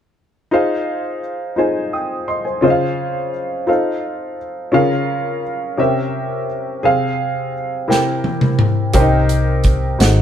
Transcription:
0.51 upright piano D#4 F4 G#4 C5 F5
1.56 upright piano D#4 F4 G#4 C5 G#5
1.93 upright piano G5 D#6
2.28 upright piano D#5 C6
2.45 upright piano C5 G#5
2.61 upright piano C#3 C#4 F4 G#4 C5 D#5
2.70 upright piano F5
3.67 upright piano D#4 F4 A4 C5 F5
4.72 upright piano C#3 C#4 F4 G#4 A#4 F5
5.77 upright piano C3 C#4 G4 A#4 C5 E5
6.83 upright piano C3 G#4 C5 F5
7.88 upright piano C3 E4 G4 A#4 C5 G5, snare
8.24 high tom
8.41 mid tom
8.59 mid tom
8.93 fingered electric bass C2, upright piano C3 C#4 G4 A#4 C5 G5, kick, closed hi-hat
9.00 upright piano D#4
9.29 closed hi-hat
9.64 kick, closed hi-hat
9.98 fingered electric bass G#1, upright piano G#2 D#4 F#4 G#4 C5 F#5, snare, closed hi-hat

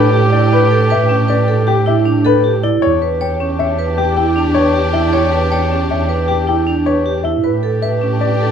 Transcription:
Already playing: double bass A2, violin section D4 G4, oboe G4, vibraphone A4, grand piano B4
0.13 vibraphone G4
0.33 vibraphone E4, grand piano D5
0.52 vibraphone B4, grand piano B4
0.71 vibraphone A4
0.90 vibraphone B4, grand piano E5
1.09 vibraphone C#4
1.28 vibraphone B4, grand piano D5
1.48 vibraphone A4
1.67 vibraphone G4, grand piano G4
1.86 vibraphone E4, grand piano E5
2.05 vibraphone D4
2.25 vibraphone A4, grand piano B4
2.44 vibraphone G4
2.63 vibraphone E4, grand piano D5
2.82 double bass E2, violin section D4 G4, oboe G4, grand piano C#5, vibraphone C#5
3.02 vibraphone B4
3.21 vibraphone C#5, grand piano G5
3.40 vibraphone C#4
3.59 vibraphone C#5, grand piano E5
3.79 vibraphone B4
3.98 grand piano G4, vibraphone G4
4.17 vibraphone E4, grand piano G5
4.36 vibraphone D4
4.55 vibraphone B4, grand piano C#5
4.74 vibraphone G4
4.93 vibraphone E4, grand piano E5
5.13 vibraphone C#5, grand piano C#5
5.32 vibraphone B4
5.52 vibraphone C#5, grand piano G5
5.71 vibraphone C#4
5.90 vibraphone C#5, grand piano E5
6.09 vibraphone B4
6.28 vibraphone G4, grand piano G4
6.47 vibraphone E4, grand piano G5
6.67 vibraphone D4
6.86 vibraphone B4, grand piano C#5
7.06 vibraphone G4
7.24 vibraphone E4, grand piano E5
7.44 double bass A2, violin section D4 G4, oboe G4, vibraphone B4, grand piano B4
7.63 vibraphone A4
7.82 vibraphone B4, grand piano E5
8.01 vibraphone C#4
8.21 vibraphone B4, grand piano D5
8.40 vibraphone A4

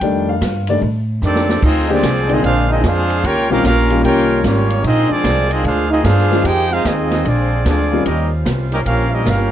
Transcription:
Already playing: grand piano G5
0.01 upright bass F2, grand piano D#3 G3 A3 D4, kick, ride
0.29 grand piano F5
0.41 upright bass G2, kick, snare, hi-hat pedal, ride
0.67 grand piano D#3 G3 A3 D4 D5, ride
0.82 upright bass A2, kick
1.22 upright bass F2, trombone section D#3 A3 D4, trumpet section C4 G4 A4 D5, hi-hat pedal
1.35 snare
1.49 snare
1.62 upright bass D2, saxophone section D3 G#3 C4 G#4, trumpet section C4 F4 G#4 D#5, trombone section D#4, kick, crash
1.89 grand piano D3 G#3 A#3 C4 G4, trombone section F3 G#3 D4, trumpet section F4 G#4
1.93 trumpet section C4 D5
2.03 upright bass C2, kick, snare, hi-hat pedal, ride
2.29 grand piano D3 G#3 A#3 C4 D4, trumpet section C4 F4 G#4 D#5, trombone section D#4, ride
2.43 upright bass A#1, trombone section G#3 D4 F4, trumpet section D4 G#4 C5 F5, kick, ride
2.69 trumpet section C4 F4 G#4 D#5, trombone section D#4
2.83 upright bass F2, trombone section G#3 D4 F4, trumpet section D4 G#4 C5 F5, kick, snare, hi-hat pedal, ride
3.10 ride
3.24 upright bass D#2, saxophone section G3 A#3 C#4 F4, trombone section A#3 C#4 G4, trumpet section F4 A#4 C#5 G5, kick, ride
3.36 upright bass C#2
3.50 upright bass A#1, grand piano D#3 G3 C4 C#4 F4, trombone section A#3 C#4 F4, trumpet section C#4 G4 A#4 F5
3.64 upright bass A#1, trombone section A#3 C#4 F4, trumpet section C#4 G4 A#4 F5, kick, snare, hi-hat pedal, ride
3.90 grand piano D#3 G3 A#3 C#4 F4, ride
4.04 upright bass C2, trombone section A#3 C#4 G4, trumpet section F4 A#4 C#5 G5, kick, ride
4.44 upright bass G#1, trombone section G3 A#3 C#4, trumpet section A#3 F4 G4 C#5, kick, snare, hi-hat pedal, ride
4.70 ride
4.84 upright bass A#1, saxophone section D3 F4 G#4, trumpet section C4 F4 G#4 D#5, trombone section D#4, kick, ride
5.10 trombone section F3 G#3 D4, trumpet section C4 F4 G#4 D5, muted upright bass stroke
5.24 upright bass C2, kick, snare, hi-hat pedal, ride
5.50 trumpet section C4 F4 G#4 D#5, trombone section D#4, ride
5.64 upright bass D2, trombone section G#3 D4 F4, trumpet section D4 G#4 C5 F5, kick, ride
5.89 trumpet section C4 F4 G#4 D#5, trombone section D#4
6.04 upright bass G2, trombone section D4 F4 G#4, trumpet section D4 G#4 C5 F5, kick, snare, hi-hat pedal, ride
6.18 snare
6.31 grand piano D#3 F3 G#3 C4 F4, snare
6.44 upright bass F2, saxophone section D#3 F4, trumpet section D#4 G#4 C5 G5, trombone section G4, kick, ride
6.71 trombone section G#3 C4 F4, trumpet section D#4 G#4 C5 F5
6.84 upright bass D#2, trombone section G#3 C4 D#4, trumpet section C4 F4 G#4 D#5, kick, snare, hi-hat pedal, ride
7.11 snare, ride
7.24 upright bass A#1, saxophone section D3 F4 C5, trombone section F3 G#3 D4, trumpet section C4 F4 G#4 D5, kick, ride
7.65 upright bass D2, trombone section F3 G#3 D4, trumpet section C4 F4 G#4 D5, kick, snare, hi-hat pedal, ride
7.92 grand piano D#3 G3 C4 C#4 F4
8.04 upright bass D#2, saxophone section G3 C#4 F4, trombone section G3 A#3 D#4, trumpet section C#4 G4 A#4 D#5, kick, ride
8.45 upright bass C2, kick, snare, hi-hat pedal, ride
8.71 trombone section G3 A#3 D#4, trumpet section C#4 G4 A#4 D#5, ride
8.85 upright bass A#1, trombone section A#3 C#4 F4, trumpet section C#4 G4 A#4 F5, kick, ride
9.12 trombone section G3 A#3 D#4, trumpet section C#4 G4 A#4 D#5
9.25 upright bass G1, trombone section A#3 C#4 F4, trumpet section C#4 G4 A#4 F5, kick, snare, hi-hat pedal, ride

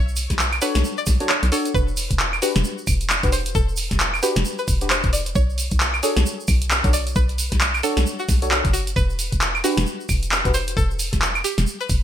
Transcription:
Already playing: fm bass B1, synth pluck C#5
0.08 shaker
0.16 open hi-hat, shaker
0.30 fm bass B1, kick, snare, closed hi-hat, shaker
0.39 clap, shaker
0.52 closed hi-hat, claves, shaker
0.62 synth stab D4 F#4 A4 C#5, synth pluck B4, open hi-hat, shaker
0.75 fm bass B1, snare, closed hi-hat, shaker
0.84 shaker
0.98 synth pluck D5, shaker
1.06 fm bass B1, kick, snare, open hi-hat, shaker
1.20 synth stab D4 F#4 A4 C#5, closed hi-hat, shaker
1.29 synth pluck C#5, clap, shaker
1.43 fm bass B1, closed hi-hat, shaker
1.52 synth stab D4 F#4 A4 C#5, synth pluck A4, open hi-hat, shaker
1.65 closed hi-hat, shaker
1.74 fm bass E1, synth pluck B4, kick, shaker
1.88 shaker
1.97 open hi-hat, shaker
2.10 fm bass E1, kick, closed hi-hat, shaker
2.19 clap, shaker
2.33 claves, shaker
2.42 synth stab D4 F#4 G4 B4, synth pluck F#4, open hi-hat, shaker
2.56 fm bass E1, snare, closed hi-hat, shaker
2.64 shaker
2.78 shaker
2.87 fm bass E1, kick, open hi-hat, claves, shaker
3.01 closed hi-hat, shaker
3.10 clap, shaker
3.23 fm bass E1, synth stab D4 F#4 G4 B4, kick, closed hi-hat, shaker
3.32 synth pluck C5, open hi-hat, shaker
3.46 closed hi-hat, shaker
3.55 fm bass E1, synth pluck A4, kick, shaker
3.68 shaker
3.76 open hi-hat, shaker
3.91 fm bass E1, kick, snare, closed hi-hat, shaker
4.00 clap, shaker
4.14 claves, shaker
4.23 synth stab D4 F#4 G4 B4, synth pluck G4, open hi-hat, shaker
4.36 fm bass E1, snare, closed hi-hat, shaker
4.45 shaker
4.58 synth pluck B4, shaker
4.68 fm bass E1, kick, open hi-hat, shaker
4.81 synth stab D4 F#4 G4 B4, closed hi-hat, shaker
4.90 synth pluck C5, clap, shaker
5.03 fm bass E1, kick, closed hi-hat, shaker
5.13 synth pluck D5, open hi-hat, shaker
5.26 closed hi-hat, shaker
5.35 fm bass B1, synth pluck C#5, kick, shaker
5.50 shaker
5.58 open hi-hat, shaker
5.71 fm bass B1, kick, closed hi-hat, shaker
5.80 clap, shaker
5.94 claves, shaker
6.03 synth stab D4 F#4 A4 C#5, synth pluck G#4, open hi-hat, shaker
6.16 fm bass B1, snare, closed hi-hat, shaker
6.26 shaker
6.40 shaker
6.48 fm bass B1, kick, open hi-hat, claves, shaker
6.62 closed hi-hat, shaker
6.70 clap, shaker
6.84 fm bass B1, synth stab D4 F#4 A4 C#5, kick, closed hi-hat, shaker
6.93 synth pluck D5, open hi-hat, shaker
7.07 closed hi-hat, shaker
7.16 fm bass B1, synth pluck B4, kick, shaker
7.29 closed hi-hat, shaker
7.38 open hi-hat, shaker
7.52 fm bass B1, kick, snare, closed hi-hat, shaker
7.60 clap, shaker
7.74 claves, shaker
7.83 synth stab D4 F#4 A4 C#5, synth pluck A4, open hi-hat, shaker
7.97 fm bass B1, snare, closed hi-hat, shaker
8.06 shaker
8.19 synth pluck F#4, shaker
8.29 fm bass B1, kick, snare, open hi-hat, shaker
8.42 synth stab D4 F#4 A4 C#5, closed hi-hat, shaker
8.51 synth pluck F#4, clap, shaker
8.65 fm bass F#1, kick, closed hi-hat, shaker
8.73 synth pluck F#4, open hi-hat, shaker
8.87 closed hi-hat, shaker
8.96 fm bass E1, synth pluck B4, kick, shaker
9.10 shaker
9.19 open hi-hat, shaker
9.32 fm bass E1, kick, closed hi-hat, shaker
9.41 clap, shaker
9.55 claves, shaker
9.64 synth stab D4 F#4 G4 B4, synth pluck F#4, open hi-hat, shaker
9.77 fm bass E1, snare, closed hi-hat, shaker
9.86 shaker
10.00 shaker
10.09 fm bass E1, kick, open hi-hat, claves, shaker
10.23 closed hi-hat, shaker
10.32 clap, shaker
10.45 fm bass E1, synth stab D4 F#4 G4 B4, kick, closed hi-hat, shaker
10.54 synth pluck C5, open hi-hat, shaker
10.67 closed hi-hat, shaker
10.77 fm bass E1, synth pluck A4, kick, shaker
10.91 shaker
10.99 open hi-hat, shaker
11.13 fm bass E1, kick, snare, closed hi-hat, shaker
11.22 clap, shaker
11.35 claves, shaker
11.44 synth pluck G4, open hi-hat, shaker
11.58 fm bass E1, snare, closed hi-hat, shaker
11.67 shaker
11.80 synth pluck B4, shaker
11.89 fm bass E1, kick, open hi-hat, shaker

